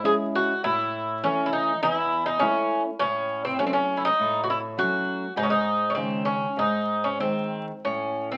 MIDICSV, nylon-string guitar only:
0, 0, Header, 1, 2, 480
1, 0, Start_track
1, 0, Tempo, 591716
1, 527, Time_signature, 4, 2, 24, 8
1, 4840, Tempo, 623053
1, 6692, End_track
2, 0, Start_track
2, 0, Title_t, "Nylon-string guitar"
2, 0, Program_c, 0, 24
2, 27, Note_on_c, 0, 56, 44
2, 31, Note_on_c, 0, 61, 41
2, 37, Note_on_c, 0, 64, 50
2, 422, Note_off_c, 0, 56, 0
2, 424, Note_off_c, 0, 61, 0
2, 427, Note_off_c, 0, 64, 0
2, 518, Note_on_c, 0, 45, 67
2, 989, Note_off_c, 0, 45, 0
2, 1000, Note_on_c, 0, 57, 44
2, 1004, Note_on_c, 0, 52, 44
2, 1006, Note_on_c, 0, 61, 38
2, 1387, Note_off_c, 0, 57, 0
2, 1389, Note_off_c, 0, 52, 0
2, 1389, Note_off_c, 0, 61, 0
2, 1486, Note_on_c, 0, 40, 63
2, 1949, Note_off_c, 0, 40, 0
2, 1964, Note_on_c, 0, 57, 45
2, 1964, Note_on_c, 0, 61, 44
2, 1968, Note_on_c, 0, 64, 56
2, 2345, Note_off_c, 0, 61, 0
2, 2346, Note_off_c, 0, 57, 0
2, 2348, Note_off_c, 0, 64, 0
2, 2436, Note_on_c, 0, 45, 68
2, 2902, Note_off_c, 0, 45, 0
2, 2914, Note_on_c, 0, 54, 41
2, 2918, Note_on_c, 0, 57, 43
2, 2920, Note_on_c, 0, 61, 51
2, 3301, Note_off_c, 0, 54, 0
2, 3303, Note_off_c, 0, 57, 0
2, 3304, Note_off_c, 0, 61, 0
2, 3402, Note_on_c, 0, 45, 64
2, 3866, Note_off_c, 0, 45, 0
2, 3872, Note_on_c, 0, 54, 44
2, 3876, Note_on_c, 0, 57, 42
2, 3878, Note_on_c, 0, 61, 52
2, 4258, Note_off_c, 0, 54, 0
2, 4259, Note_off_c, 0, 57, 0
2, 4261, Note_off_c, 0, 61, 0
2, 4350, Note_on_c, 0, 44, 64
2, 4823, Note_off_c, 0, 44, 0
2, 4835, Note_on_c, 0, 51, 44
2, 4840, Note_on_c, 0, 49, 43
2, 4840, Note_on_c, 0, 56, 38
2, 5215, Note_off_c, 0, 51, 0
2, 5217, Note_off_c, 0, 56, 0
2, 5218, Note_off_c, 0, 49, 0
2, 5303, Note_on_c, 0, 44, 52
2, 5778, Note_off_c, 0, 44, 0
2, 5785, Note_on_c, 0, 51, 41
2, 5789, Note_on_c, 0, 56, 37
2, 5790, Note_on_c, 0, 60, 44
2, 6180, Note_off_c, 0, 51, 0
2, 6182, Note_off_c, 0, 56, 0
2, 6182, Note_off_c, 0, 60, 0
2, 6290, Note_on_c, 0, 45, 53
2, 6692, Note_off_c, 0, 45, 0
2, 6692, End_track
0, 0, End_of_file